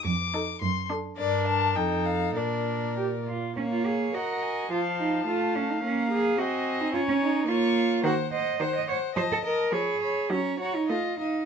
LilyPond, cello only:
\new Staff \with { instrumentName = "Cello" } { \time 2/4 \key bes \major \tempo 4 = 106 f,4 fis,4 | g,4 f,4 | bes,4. r8 | \key bes \minor des'16 f'16 aes'8 ges'4 |
f'8 ees'8 f'8 des'16 ees'16 | des'8 aes'8 ges'8. ees'16 | f'16 des'16 ees'8 f'4 | ges'8 ees''8 c''16 ees''16 des''8 |
c''16 a'16 bes'8 aes'4 | des'8 ges'16 ees'16 f'8 ees'8 | }